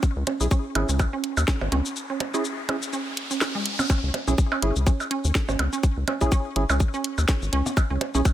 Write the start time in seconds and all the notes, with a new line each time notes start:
0.03 kick, riser, shaker
0.16 C#2
0.27 C#4, closed hi-hat, percussion blips
0.40 B1 C#4 E4 G#4, shaker
0.51 C#4, kick, shaker
0.75 G#1 C#4 E4 G#4, closed hi-hat, percussion blips
0.89 C#2 C#4, shaker
0.99 kick, percussion blips, shaker
1.13 C#4
1.24 closed hi-hat
1.37 D#2, percussion blips, shaker
1.48 C#4, kick, snare, shaker
1.61 G#1, percussion blips
1.72 C#2 C#4, closed hi-hat, percussion blips
1.86 shaker
1.96 shaker
2.10 C#4
2.20 closed hi-hat, percussion blips
2.34 C#4 E4 G#4, shaker
2.45 shaker
2.69 C#4 E4 G#4, closed hi-hat, percussion blips
2.82 shaker
2.93 C#4, shaker
3.17 closed hi-hat
3.31 C#4, shaker
3.41 C#4, snare, percussion blips, shaker
3.55 G#3
3.66 closed hi-hat
3.79 C#4, percussion blips, shaker
3.90 C#4, kick, percussion blips, shaker
4.03 C#2
4.14 closed hi-hat, percussion blips
4.27 B1 C#4 E4 G#4, shaker
4.38 kick, shaker
4.52 C#4, percussion blips
4.62 G#1 C#4 E4 G#4, closed hi-hat
4.76 C#2, shaker
4.87 C#4, kick, shaker
5.00 percussion blips, shaker
5.11 C#4, closed hi-hat
5.24 D#2, shaker
5.35 kick, snare, shaker
5.48 G#1 C#4, percussion blips, shaker
5.59 C#2, closed hi-hat, percussion blips
5.73 C#4, shaker
5.83 kick, shaker
5.97 C#2
6.08 C#4, closed hi-hat, percussion blips
6.21 B1 C#4 E4 G#4, kick, shaker
6.32 C#4, kick, shaker
6.56 G#1 C#4 E4 G#4, closed hi-hat
6.70 C#2 C#4, percussion blips, shaker
6.80 kick, shaker
6.94 C#4, shaker
7.04 closed hi-hat
7.18 D#2, percussion blips, shaker
7.29 C#4, kick, snare, shaker
7.42 G#1, shaker
7.53 C#2 C#4, closed hi-hat
7.66 percussion blips, shaker
7.77 kick, percussion blips, shaker
7.90 C#2 C#4
8.01 closed hi-hat, percussion blips
8.15 B1 C#4 E4 G#4, shaker
8.25 kick, percussion blips, shaker